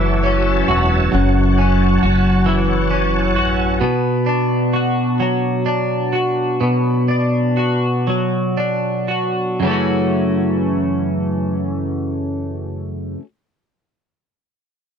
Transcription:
Already playing: F#1 F#2 E3 A3 C#4 F#4 C#5 E5 A5
0.23 C#4
0.68 E1 F#4
1.12 F#1 F#2 F#5
1.59 C#4
2.03 F#1 F#4
2.46 E3
2.91 C#4
3.36 A1 F#4
3.81 B2
4.26 D4
4.73 F#4
5.20 F#3
5.66 D4
6.13 F#4
6.61 B2
7.08 D4
7.57 F#4
8.07 F#3
8.57 D4
9.08 F#4
9.60 F#2 C#3
9.64 E3 A3
9.69 C#4 F#4

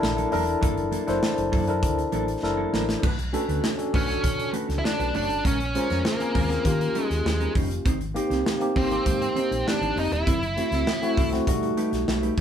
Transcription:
Already playing: D4 E4 A4 A#4
0.02 A#1, muted clean electric guitar stroke, snare
0.17 F#3 A#3 E4 A4, closed hi-hat
0.31 E1 F#3 A#3 D4 E4 A4 A#4, open hi-hat
0.47 muted clean electric guitar stroke, closed hi-hat
0.61 F#1 F#3 A#3 E4 A4, kick, closed hi-hat
0.76 muted clean electric guitar stroke, closed hi-hat
0.91 F#3 A#3 E4 A4, closed hi-hat
1.06 F#1 F#3 A#3 D4 E4 A4 C5, snare, closed hi-hat
1.23 snare
1.37 F#1, muted clean electric guitar stroke, closed hi-hat
1.52 F#2 F#3 A#3 E4 A4, kick, open hi-hat
1.67 D4 E4 A4 A#4, closed hi-hat
1.83 D2, muted clean electric guitar stroke, kick, closed hi-hat
1.98 muted clean electric guitar stroke, closed hi-hat
2.12 A1 F#3 A#3 E4 A4, closed hi-hat
2.28 muted clean electric guitar stroke, closed hi-hat
2.42 F#1 D4 E4 A4 A#4, muted clean electric guitar stroke, snare
2.57 F#3 A#3 E4 A4
2.72 A1 F#3 A#3 E4 A#4, snare
2.88 muted clean electric guitar stroke, snare
3.02 B1 A3 D4 F#4 B4, kick, crash
3.18 muted clean electric guitar stroke, closed hi-hat
3.33 A3 C#4 D4 F#4 A4 B4, closed hi-hat
3.48 D2 A3 D4 F#4 B4, closed hi-hat
3.64 snare
3.78 C#4 D4 F#4 A4, muted clean electric guitar stroke, closed hi-hat
3.93 B1 A3 C#4 D4 F#4 B4, kick, open hi-hat
4.09 D3 C#4 F#4 A4, muted clean electric guitar stroke, snare, closed hi-hat
4.23 B2, muted clean electric guitar stroke, kick, closed hi-hat
4.38 muted clean electric guitar stroke, closed hi-hat
4.53 A3 D4 F#4 B4, closed hi-hat
4.69 C#2, muted clean electric guitar stroke, snare, closed hi-hat
4.79 E4
4.84 D4, muted clean electric guitar stroke, snare
4.99 B1 A3 D4 F#4 B4, closed hi-hat
5.14 F#1 A3 D4 F#4 C#5, open hi-hat
5.30 G1, muted clean electric guitar stroke, closed hi-hat
5.45 A#1 G#3 C#4 F4 A#4, kick, closed hi-hat
5.60 muted clean electric guitar stroke, closed hi-hat
5.75 G#3 C#4 F4 G#4 A#4 C5, closed hi-hat
5.90 F2 G#3 C#4 F4 A#4, snare, closed hi-hat
6.05 A#3, snare
6.20 C4 C#4 F4 G#4, muted clean electric guitar stroke, closed hi-hat
6.35 D#2 G#3 C#4 F4 A#4, kick, open hi-hat
6.50 C4 C#4 F4 G#4, muted clean electric guitar stroke, snare, closed hi-hat
6.65 D#3 A#3 C#4 F4 G4, muted clean electric guitar stroke, kick, closed hi-hat
6.80 muted clean electric guitar stroke, closed hi-hat
6.95 G3 C#4 D#4 A#4, closed hi-hat
7.04 G#3
7.10 D#2, muted clean electric guitar stroke, snare, closed hi-hat
7.25 D#2, muted clean electric guitar stroke, snare
7.40 G3 C#4 D#4 A#4, closed hi-hat
7.55 F1 G3 C#4 D#4 C5, kick, open hi-hat
7.70 muted clean electric guitar stroke, closed hi-hat
7.85 G#1 C4 D#4 G4 C5, kick, closed hi-hat
8.01 muted clean electric guitar stroke, closed hi-hat
8.14 A#3 C4 D#4 G4 C5, closed hi-hat
8.30 C2 C4 D#4 G4 C5, snare, closed hi-hat
8.46 snare
8.60 A#3 C4 D#4 G4, muted clean electric guitar stroke, closed hi-hat
8.76 G#1 C4 D#4 G4 C5, kick, open hi-hat
8.90 A#3 C4 D#4 G4, muted clean electric guitar stroke, closed hi-hat
9.06 G#2, muted clean electric guitar stroke, kick, closed hi-hat
9.22 muted clean electric guitar stroke, closed hi-hat
9.36 C4 D#4 G4 C5, closed hi-hat
9.51 A#1, closed hi-hat
9.67 D4, muted clean electric guitar stroke, snare
9.81 G#1 C4 D#4 G4 C5, closed hi-hat
9.96 F1 C4 D#4 G4 D5, open hi-hat
10.11 D#1 E4, muted clean electric guitar stroke, closed hi-hat
10.27 F#1 C4 E4 A4 C5, kick, closed hi-hat
10.42 muted clean electric guitar stroke, closed hi-hat
10.56 A3 C4 E4 F#4 A4 C5, closed hi-hat
10.71 C#2 C4 E4 A4 C5, snare, closed hi-hat
10.87 snare
11.02 A3 C4 E4 F#4, muted clean electric guitar stroke, closed hi-hat
11.17 C2 C4 E4 A4 C5, kick, open hi-hat
11.32 A3 C4 E4 F#4, muted clean electric guitar stroke, snare, closed hi-hat
11.47 B2 G3 A3 D#4 F#4, muted clean electric guitar stroke, kick, closed hi-hat
11.63 muted clean electric guitar stroke, closed hi-hat
11.77 A3 D#4 G4 B4, closed hi-hat
11.92 B1, muted clean electric guitar stroke, snare, closed hi-hat
12.08 B1, muted clean electric guitar stroke, snare
12.23 A3 D#4 G4 B4, closed hi-hat
12.37 open hi-hat

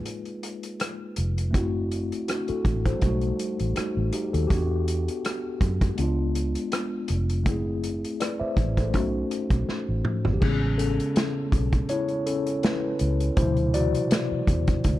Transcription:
Already playing: G#3 A#3 D#4 F4
0.06 closed hi-hat
0.25 closed hi-hat
0.43 closed hi-hat
0.63 closed hi-hat
0.80 cross-stick, closed hi-hat
1.16 F1, closed hi-hat
1.38 closed hi-hat
1.51 F#1 A3 C4 E4, kick, closed hi-hat
1.57 F#4
1.91 closed hi-hat
2.12 closed hi-hat
2.28 D4 F#4, cross-stick, closed hi-hat
2.48 F#4 A4, muted fingered electric bass stroke, closed hi-hat
2.65 A1, kick, closed hi-hat
2.85 A4 C5, kick, closed hi-hat
2.99 B1 G3 A3, kick, closed hi-hat
3.03 D#4 F#4
3.21 closed hi-hat
3.39 closed hi-hat
3.60 A1, closed hi-hat
3.76 D#4 F#4, muted fingered electric bass stroke, cross-stick, closed hi-hat
3.97 A1
4.13 D#4 G4, closed hi-hat
4.33 D#2 F#4 A4, closed hi-hat
4.47 E2 B3 G4, kick, closed hi-hat
4.52 D4 F#4
4.88 closed hi-hat
5.08 closed hi-hat
5.25 cross-stick, closed hi-hat
5.61 F#2, kick, closed hi-hat
5.81 kick, closed hi-hat
5.95 C#2 G#3 B3 D4, closed hi-hat
6.02 F4
6.35 closed hi-hat
6.55 closed hi-hat
6.72 cross-stick, closed hi-hat
7.08 F1, closed hi-hat
7.30 closed hi-hat
7.44 F#1 A3 C4, kick, closed hi-hat
7.48 E4 G#4
7.84 closed hi-hat
8.04 closed hi-hat
8.20 B4 D5, cross-stick, closed hi-hat
8.40 C5 E5, muted fingered electric bass stroke
8.57 A1, kick, closed hi-hat
8.77 A4 C5, kick, closed hi-hat
8.90 A3 C#4, kick, closed hi-hat
8.95 B1 D#4 F#4
9.31 closed hi-hat
9.50 B1, kick, closed hi-hat
9.69 muted fingered electric bass stroke, snare
9.89 A1
10.05 mid tom
10.25 G#1, floor tom
10.33 G4
10.41 A1 C#3 G#3 B3 C#4 G#4, kick, crash
10.78 C#4 A4, closed hi-hat
11.00 closed hi-hat
11.16 snare, closed hi-hat
11.52 B1, kick, closed hi-hat
11.72 kick, closed hi-hat
11.89 E4 C#5, closed hi-hat
12.08 closed hi-hat
12.26 C#4 A4, closed hi-hat
12.47 closed hi-hat
12.63 E4 B4, snare, closed hi-hat
12.99 C#2, closed hi-hat
13.20 closed hi-hat
13.37 D2 B2 C3 E3 F#3 E4 C5, kick, closed hi-hat
13.57 closed hi-hat
13.74 F#4 D5, closed hi-hat
13.95 closed hi-hat
14.11 snare, closed hi-hat
14.32 muted fingered electric bass stroke
14.47 E2, kick, closed hi-hat
14.68 kick, closed hi-hat
14.84 D2, kick, closed hi-hat

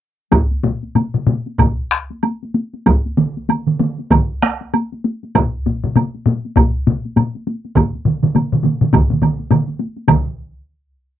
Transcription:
0.32 taiko, taiko high, high woodblock
0.51 taiko high
0.63 taiko low-mid, taiko high
0.83 taiko high
0.95 taiko low-mid, taiko high, high woodblock
1.14 taiko low-mid, taiko high
1.27 taiko low-mid, taiko high
1.47 taiko high
1.59 taiko, taiko low-mid, taiko high, high woodblock
1.91 taiko rim
2.10 taiko high
2.23 taiko high, high woodblock
2.43 taiko high
2.54 taiko high
2.74 taiko high
2.86 taiko, taiko high, high woodblock
3.06 taiko high
3.17 taiko mid, taiko high
3.37 taiko high
3.49 taiko mid, taiko high, high woodblock
3.67 taiko mid, taiko high
3.79 taiko mid, taiko high
3.99 taiko high
4.11 taiko, taiko mid, taiko high, high woodblock
4.42 taiko rim, taiko high
4.61 taiko high
4.74 taiko high, high woodblock
4.92 taiko high
5.04 taiko high
5.23 taiko high
5.35 taiko, taiko low-mid, taiko high, high woodblock
5.66 taiko low-mid, taiko high
5.84 taiko low-mid, taiko high
5.96 taiko low-mid, taiko high, high woodblock
6.15 taiko high
6.26 taiko low-mid, taiko high
6.45 taiko high
6.56 taiko, taiko low-mid, taiko high, high woodblock
6.87 taiko low-mid, taiko high
7.05 taiko high
7.17 taiko low-mid, taiko high, high woodblock
7.35 taiko high
7.47 taiko high
7.65 taiko high
7.76 taiko, taiko low-mid, taiko mid, taiko high, high woodblock
7.95 taiko high
8.05 taiko low-mid, taiko mid
8.23 taiko low-mid, taiko mid, taiko high
8.35 taiko low-mid, taiko mid, taiko high, high woodblock
8.52 taiko low-mid, taiko mid
8.63 taiko low-mid, taiko mid, taiko high
8.81 taiko low-mid, taiko mid, taiko high
8.93 taiko, taiko low-mid, taiko mid, taiko high, high woodblock
9.10 taiko low-mid, taiko mid, taiko high
9.22 taiko low-mid, taiko mid, taiko high, high woodblock
9.39 taiko high
9.51 taiko low-mid, taiko mid, taiko high, high woodblock
9.68 taiko high
9.79 taiko high
9.97 taiko high
10.08 taiko, taiko low-mid, taiko mid, taiko high, high woodblock

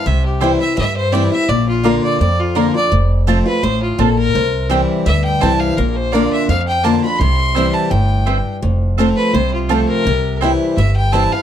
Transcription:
0.06 C2 C3 E5
0.26 G4
0.41 E3 G3 C4 E4 C5 G5
0.60 C4 E4 E5
0.77 G2 E5
0.97 C5
1.12 E3 G3 C4 E4 C5 D5 G5
1.32 C4 E4 E5
1.49 A#1 A#2 D5
1.69 F4
1.83 D3 A#3 D4 F4 A#4 D5 A#5
2.04 D5
2.20 F2 D5
2.40 F4
2.55 D3 A#3 D4 F4 A#4 D5 A#5
2.74 D4 F4 D5
2.92 F1 F2
3.27 F3 A3 C4 F4 C5 A5
3.46 C4 F4 B4
3.63 A1 A2 C5
3.83 F4
3.98 A#1 A#2 C4 F4 A4 C5 A5
4.19 A#4
4.35 C2 C3
4.69 E3 G3 C4 E4 C5 G5
5.06 D2 G2 E5
5.24 G5
5.40 C2 E3 G3 C4 E4 C5 G5 A5
5.60 F5
5.77 A#1 A#2 A#4
5.96 C5
6.12 D3 A#3 D4 F4 D5 A#5
6.33 E5
6.49 F2 F5
6.68 G5
6.83 D3 A#3 D4 F4 D5 A5 A#5
7.04 D4 F4 B5
7.19 C2 C3 C6
7.55 E3 G3 C4 E4 C5 G5
7.74 A5
7.90 G1 A2 G5
8.26 G2 C4 E4 C5 G5
8.62 F1 F2
8.98 F3 A3 C4 F4 C5 A5
9.17 B4
9.34 C2 C3 C5
9.54 F4
9.69 F3 A3 C4 F4 A4 C5 A5
9.89 A#4
10.06 C2 C3
10.41 E3 G3 C4 E4 C5 G5
10.76 G1 G2 E5
10.96 G5
11.12 E3 G3 C4 E4 C5 G5 A5
11.32 C4 E4 F5

